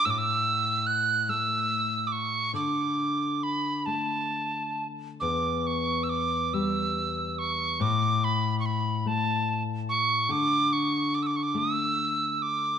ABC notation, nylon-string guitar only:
X:1
M:6/8
L:1/8
Q:3/8=47
K:D
V:1 name="Nylon-string guitar" clef=bass
A,,3 A,3 | D,3 A,3 | E,,3 G,3 | A,,3 A,3 |
D,3 A,3 |]